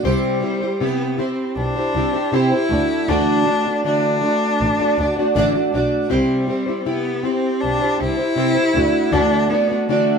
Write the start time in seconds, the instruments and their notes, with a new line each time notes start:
0.03 double bass C2, steel-string acoustic guitar C3 C4 E4 G4 C5, cello G3
0.41 steel-string acoustic guitar C4 E4 G4 C5
0.60 steel-string acoustic guitar E4 G4 C5
0.80 steel-string acoustic guitar C3 E4 G4, cello B3
1.17 steel-string acoustic guitar C4 E4 G4 C5, cello C4
1.56 double bass B1, cello D4
1.75 steel-string acoustic guitar E4 G4 C5
1.94 double bass C2, steel-string acoustic guitar C4 E4 G4 C5
2.13 steel-string acoustic guitar E4 G4 C5
2.32 steel-string acoustic guitar C3 C4 E4 G4 C5, cello E4
2.51 steel-string acoustic guitar E4 G4 C5
2.69 double bass D2, steel-string acoustic guitar A3 D4 F#4 D5
3.08 double bass D2, steel-string acoustic guitar D3 E3 A3 D4 F#4 D5, cello D4
3.46 steel-string acoustic guitar A3 D4 F#4 D5
3.65 steel-string acoustic guitar A3 D4 F#4 D5
3.84 steel-string acoustic guitar D3 E3 A3 D4 F#4 D5, cello D4
4.21 steel-string acoustic guitar A3 D4 F#4 D5
4.61 double bass A1
4.79 steel-string acoustic guitar A3 D4 F#4 D5
4.98 double bass D2, steel-string acoustic guitar A3 D4 F#4 D5
5.17 steel-string acoustic guitar A3 D4 F#4 D5
5.35 double bass A1, steel-string acoustic guitar D3 E3 A3 D4 F#4 D5
5.53 steel-string acoustic guitar A3 D4 F#4 D5
5.73 double bass B1, steel-string acoustic guitar A3 D4 F#4 D5
6.09 double bass C2, steel-string acoustic guitar C3 C4 E4 G4 C5
6.13 cello G3
6.48 steel-string acoustic guitar C4 E4 G4 C5
6.66 steel-string acoustic guitar E4 G4 C5
6.81 cello C4
6.85 steel-string acoustic guitar C3 E4 G4, cello B3
7.23 steel-string acoustic guitar C4 E4 G4 C5, cello C4
7.61 double bass B1, cello D4
7.80 steel-string acoustic guitar E4 G4 C5
7.98 double bass C2, steel-string acoustic guitar C4 E4 G4 C5, cello E4
8.17 steel-string acoustic guitar E4 G4 C5
8.36 steel-string acoustic guitar C3 C4 E4 G4 C5
8.55 steel-string acoustic guitar E4 G4 C5
8.74 double bass D2, steel-string acoustic guitar A3 D4 F#4 D5
9.11 double bass D2, steel-string acoustic guitar D3 E3 A3 D4 F#4 D5, cello D4
9.50 steel-string acoustic guitar A3 D4 F#4 D5, cello B3
9.69 steel-string acoustic guitar A3 D4 F#4 D5
9.88 steel-string acoustic guitar D3 E3 A3 D4 F#4 D5, cello A3